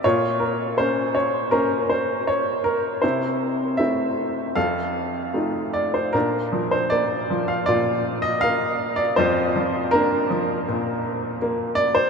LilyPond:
<<
  \new Staff \with { instrumentName = "Upright piano" } { \time 4/4 \key bes \lydian \tempo 4 = 80 << { des''8 bes'8 c''8 des''8 bes'8 c''8 des''8 bes'8 | c''4 e''4 f''4. d''16 c''16 | \key bes \major bes'8. c''16 d''8. f''16 d''8. ees''16 f''8. d''16 | c''4 bes'2~ bes'8 d''16 c''16 | } \\ { f'2 des'2 | e'2 a'2 | d'2 f'2 | f'4 d'2~ d'8 r8 | } >> }
  \new Staff \with { instrumentName = "Upright piano" } { \time 4/4 \key bes \lydian bes,4 <bes des'>4 <bes c''>4 r4 | c4 <a c' e'>4 f,4 <a ees' f'>4 | \key bes \major bes,8 f8 bes8 f8 bes,4 bes4 | f,8 f8 bes8 f8 bes,4 bes4 | }
>>